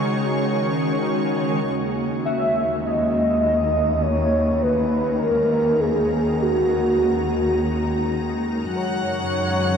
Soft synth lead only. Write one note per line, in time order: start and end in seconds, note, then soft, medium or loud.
2.25 2.87 E5 loud
2.85 4.03 D#5 loud
4.02 4.64 C#5 loud
4.62 5.20 B4 medium
5.19 5.81 A#4 medium
5.80 6.43 G#4 medium
6.41 8.15 F#4 medium
8.75 9.77 C#5 loud